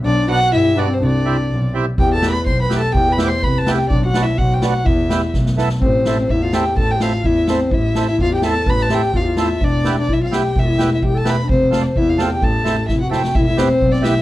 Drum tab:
SD |--------|--------|--o---o-|--o---o-|
BD |--------|--------|o---o---|o---o---|

SD |--o---o-|--o-oooo|--o---o-|--o---o-|
BD |o---o---|o---o---|o---o---|o---o---|

SD |--o---o-|-oo---o-|--o---o-|--o---o-|
BD |o---o---|o---o---|o---o---|o---o---|

SD |--o---o-|--o-o-oo|--o--oo-|
BD |o---o---|o---o---|o---o---|